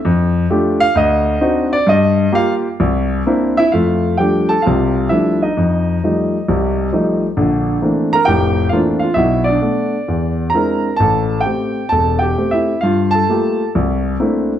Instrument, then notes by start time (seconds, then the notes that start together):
grand piano
0.05 F2
0.50 A3 D4 F4 G4
0.80 F5
0.95 D2 D#5
1.41 C4 D4 D#4 F#4
1.73 D5
1.87 G2 D#5
2.32 A#3 F4 G4 F5
2.80 C2
3.27 A#3 C4 D4 E4
3.57 E4 E5
3.72 F2 A3 F4 F5
4.17 F3 G3 A3 D4 G4 G5
4.49 A4 A5
4.62 F4 F5
4.66 C2 C3
5.09 F3 G3 A3 D4 E4 E5
5.42 D#4 D#5
5.57 F2
6.04 F3 G3 A3 D#4
6.48 C2 C3
6.92 F3 G3 A3 D#4
7.37 A#1 D3
7.82 E3 A3 A#3 C4 D4
8.13 A#4 A#5
8.25 F1 A2 G4 G5
8.69 E3 A3 A#3 C4 D4 F4 F5
8.99 F4 F5
9.14 B1 B2 E5
9.19 E4
9.44 D5
9.49 D4
9.61 A3 B3 D4
10.08 E2
10.50 A#5
10.54 G#3 C4 D4 E4 A#4
10.96 A1 A5
11.02 A4
11.40 G5
11.45 A3 C4 G4
11.89 E1 A4 A5
12.19 G4 G5
12.37 A3 C4 G4
12.51 E4 E5
12.81 G2 F4 F5
13.11 A5
13.15 A4
13.29 A3 A#3 F4 G4
13.75 C2
14.20 A3 A#3 C4 D4 E4